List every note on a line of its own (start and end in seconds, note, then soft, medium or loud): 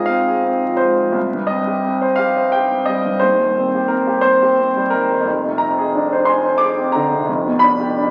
0.00 1.13 G#1 medium
0.00 0.80 G#2 soft
0.00 0.09 C4 soft
0.00 1.18 F4 soft
0.00 0.27 G#4 medium
0.00 1.19 D#5 medium
0.00 0.06 F5 medium
0.06 0.38 C4 medium
0.06 0.79 F5 medium
0.27 0.56 G#4 medium
0.45 0.74 C4 soft
0.64 0.92 F3 soft
0.77 1.09 G#2 soft
0.77 1.14 C5 medium
0.99 1.17 F3 soft
1.12 3.18 C2 medium
1.34 1.61 G2 soft
1.47 1.78 C4 soft
1.47 2.18 D#5 medium
1.67 1.95 G4 soft
1.84 2.12 C4 medium
2.02 2.30 C5 medium
2.16 2.47 G4 medium
2.16 2.53 F5 loud
2.37 2.65 C5 medium
2.52 2.83 G4 medium
2.52 2.88 G5 loud
2.72 3.00 C4 soft
2.85 3.17 G3 medium
2.85 3.22 D#5 medium
3.06 3.23 G2 soft
3.19 5.23 D#1 medium
3.19 5.24 D#2 medium
3.19 3.89 C5 medium
3.40 3.67 D#3 soft
3.57 3.84 C4 medium
3.75 4.01 G4 medium
3.88 4.18 C4 medium
3.88 4.23 A#4 medium
4.07 4.35 G4 medium
4.21 4.52 C4 medium
4.21 4.92 C5 loud
4.42 4.70 G4 medium
4.60 4.87 C4 medium
4.77 5.04 G3 medium
4.90 5.21 D#3 medium
4.90 5.26 A#4 medium
5.10 5.28 G3 medium
5.21 7.22 F2 medium
5.26 7.24 F1 medium
5.45 5.72 C3 medium
5.58 5.89 C4 medium
5.58 6.27 A#5 medium
5.79 6.06 G#4 medium
5.95 6.22 D4 medium
6.12 6.39 C5 medium
6.25 6.55 G#5 medium
6.25 6.60 C6 medium
6.46 6.72 C5 medium
6.58 6.88 G#4 medium
6.58 6.93 D6 loud
6.78 7.05 C4 medium
6.92 7.23 D3 medium
6.92 7.28 A#5 medium
7.12 7.29 C3 medium
7.26 8.11 F1 medium
7.26 8.11 F2 medium
7.46 7.74 B2 medium
7.59 7.91 D4 medium
7.59 8.11 B5 loud
7.80 8.07 G4 medium
7.97 8.11 D4 medium